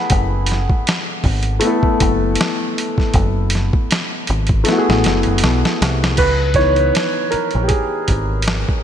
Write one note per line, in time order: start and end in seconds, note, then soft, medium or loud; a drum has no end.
0.00 1.57 A3 medium
0.00 1.59 B3 medium
0.00 1.60 E4 medium
0.00 6.20 G4 medium
0.00 1.61 G#4 medium
0.00 6.20 F#5 medium
0.00 6.20 B5 medium
0.10 0.66 F#1 loud
0.10 kick loud
0.10 closed hi-hat medium
0.46 closed hi-hat medium
0.52 snare soft
0.70 muted picked electric bass stroke soft
0.70 kick loud
0.87 snare loud
0.87 closed hi-hat medium
1.24 1.59 G#1 loud
1.24 kick medium
1.24 open hi-hat soft
1.43 closed hi-hat soft
1.60 4.61 A3 medium
1.60 4.62 B3 medium
1.60 closed hi-hat loud
1.65 4.63 E4 medium
1.65 4.65 A4 medium
1.83 muted picked electric bass stroke medium
1.83 kick medium
2.00 2.36 F#1 medium
2.00 kick medium
2.00 closed hi-hat medium
2.35 closed hi-hat medium
2.41 snare loud
2.78 closed hi-hat medium
2.98 kick medium
2.98 snare soft
3.14 3.70 F#1 loud
3.14 kick loud
3.14 closed hi-hat medium
3.50 closed hi-hat medium
3.55 snare soft
3.73 muted picked electric bass stroke soft
3.73 kick loud
3.91 snare loud
3.91 closed hi-hat medium
4.27 4.64 G#1 loud
4.27 closed hi-hat medium
4.47 kick medium
4.47 closed hi-hat soft
4.64 6.14 A3 medium
4.64 6.15 B3 medium
4.64 closed hi-hat medium
4.69 6.17 E4 medium
4.69 4.76 F#4 medium
4.69 snare medium
4.78 6.21 G#4 medium
4.89 5.04 A1 medium
4.89 snare medium
5.04 5.24 F#1 medium
5.04 snare medium
5.04 closed hi-hat medium
5.23 5.41 F#1 medium
5.23 closed hi-hat soft
5.38 closed hi-hat medium
5.44 5.63 B1 loud
5.44 snare loud
5.65 snare medium
5.82 6.16 C2 medium
5.82 snare loud
5.82 closed hi-hat medium
6.04 snare medium
6.17 6.90 C#2 medium
6.17 6.57 B4 loud
6.17 kick loud
6.17 closed hi-hat medium
6.17 crash medium
6.54 7.67 E3 medium
6.54 7.67 B3 soft
6.54 7.34 C#5 medium
6.54 kick medium
6.54 closed hi-hat medium
6.58 7.67 D#4 medium
6.58 snare soft
6.76 closed hi-hat soft
6.95 snare loud
6.95 closed hi-hat medium
7.31 7.38 A#4 medium
7.31 muted picked electric bass stroke soft
7.31 closed hi-hat medium
7.51 closed hi-hat soft
7.55 7.69 A#1 medium
7.64 7.70 G4 medium
7.68 8.41 G#4 medium
7.68 kick medium
7.68 closed hi-hat medium
8.08 8.64 G#1 medium
8.08 kick medium
8.08 closed hi-hat medium
8.42 closed hi-hat medium
8.48 snare loud
8.69 kick medium